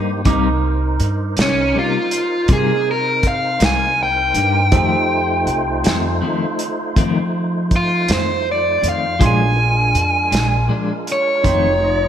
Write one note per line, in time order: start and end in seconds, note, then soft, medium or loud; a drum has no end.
0.00 0.23 G2 medium
0.00 0.12 G3 soft
0.00 0.11 A#3 soft
0.00 0.22 A#3 medium
0.00 0.10 D#4 soft
0.00 0.21 D#4 soft
0.00 0.22 D#4 medium
0.00 0.22 G4 medium
0.00 0.22 C5 medium
0.00 0.21 D5 soft
0.25 0.96 C2 medium
0.25 0.48 C3 medium
0.25 0.48 G3 medium
0.25 0.48 A#3 medium
0.25 4.69 D#4 medium
0.25 0.49 D#4 medium
0.25 4.69 A#4 medium
0.25 4.69 C5 medium
0.25 4.69 D6 medium
0.25 kick loud
0.25 closed hi-hat medium
1.00 1.34 G2 medium
1.00 closed hi-hat medium
1.36 1.72 C2 medium
1.36 1.61 G3 soft
1.36 1.60 A#3 soft
1.36 1.59 D#4 soft
1.36 snare medium
1.36 closed hi-hat medium
1.42 1.76 C#4 medium
1.74 1.97 C3 medium
1.74 1.97 G3 medium
1.74 1.98 A#3 medium
1.74 1.98 D#4 medium
1.79 2.49 F4 medium
2.11 closed hi-hat medium
2.48 3.57 C3 medium
2.48 2.72 C3 medium
2.48 2.72 G3 medium
2.48 2.73 A#3 medium
2.48 2.73 D#4 medium
2.48 kick loud
2.48 closed hi-hat medium
2.53 2.87 G#4 medium
2.91 3.25 A#4 medium
3.23 kick medium
3.23 closed hi-hat medium
3.28 3.62 F5 medium
3.59 4.31 C2 medium
3.59 3.84 G3 soft
3.59 3.84 A#3 soft
3.59 3.83 D#4 soft
3.59 snare loud
3.59 closed hi-hat medium
3.66 4.00 G#5 medium
4.03 6.21 G5 medium
4.34 4.69 G2 medium
4.34 4.59 G3 soft
4.34 4.58 A#3 soft
4.34 4.57 D#4 soft
4.34 closed hi-hat medium
4.71 4.95 F2 medium
4.71 5.43 F2 medium
4.71 4.95 D#3 medium
4.71 9.16 A3 medium
4.71 4.96 A3 medium
4.71 4.96 C4 medium
4.71 9.16 D#4 soft
4.71 9.16 D#4 medium
4.71 9.16 F4 medium
4.71 9.16 G4 soft
4.71 9.16 A4 soft
4.71 9.16 C5 medium
4.71 kick loud
4.71 closed hi-hat medium
5.46 5.81 C2 medium
5.46 closed hi-hat soft
5.84 6.20 F2 medium
5.84 6.08 D#3 soft
5.84 6.08 A3 soft
5.84 6.07 C4 medium
5.84 snare medium
5.84 closed hi-hat medium
6.21 6.44 F2 medium
6.21 6.45 D#3 medium
6.21 6.45 A3 medium
6.21 6.45 C4 medium
6.59 closed hi-hat medium
6.96 7.19 F2 medium
6.96 7.19 D#3 medium
6.96 8.04 F3 medium
6.96 7.19 A3 medium
6.96 7.20 C4 loud
6.96 kick medium
6.96 closed hi-hat medium
7.71 kick medium
7.71 closed hi-hat soft
7.76 8.10 F4 medium
8.08 8.80 F2 medium
8.08 8.32 D#3 soft
8.08 8.31 A3 soft
8.08 8.31 C4 medium
8.08 snare loud
8.08 closed hi-hat medium
8.13 8.47 C5 medium
8.52 8.85 D5 medium
8.81 9.17 F2 medium
8.81 9.06 D#3 soft
8.81 9.06 A3 soft
8.81 9.05 C4 soft
8.81 closed hi-hat medium
8.89 9.22 F5 medium
9.19 9.91 A#1 medium
9.19 9.42 A#2 medium
9.19 9.58 D#3 medium
9.19 9.42 F3 medium
9.19 9.58 F#3 medium
9.19 9.43 G#3 medium
9.19 9.58 A3 medium
9.19 9.58 B3 medium
9.19 11.40 D4 soft
9.19 9.43 D4 medium
9.19 11.40 F4 soft
9.19 11.40 G#4 medium
9.19 11.41 C6 medium
9.19 kick loud
9.19 closed hi-hat medium
9.26 10.69 G#5 medium
9.58 11.43 G#3 medium
9.58 11.43 D4 medium
9.58 11.43 F4 medium
9.58 11.43 A#4 medium
9.95 10.29 F2 medium
9.95 closed hi-hat medium
10.31 10.67 A#1 medium
10.31 10.55 F3 soft
10.31 10.55 G#3 soft
10.31 10.54 D4 medium
10.31 closed hi-hat medium
10.35 snare medium
10.68 10.91 A#2 medium
10.68 10.92 F3 medium
10.68 10.92 G#3 medium
10.68 10.93 D4 medium
11.07 closed hi-hat medium
11.12 12.08 C#5 medium
11.43 12.08 F1 medium
11.43 11.66 F2 medium
11.43 11.67 D#3 medium
11.43 11.82 F#3 medium
11.43 11.67 A3 medium
11.43 11.82 A#3 medium
11.43 11.68 C4 medium
11.43 12.08 D#4 medium
11.43 11.81 D#4 medium
11.43 12.08 F4 soft
11.43 11.82 C#5 medium
11.43 12.08 G5 soft
11.43 12.08 C6 medium
11.43 kick loud
11.43 closed hi-hat medium
11.82 12.08 F3 medium
11.82 12.08 D#4 medium
11.82 12.08 F4 medium
11.82 12.08 D#5 medium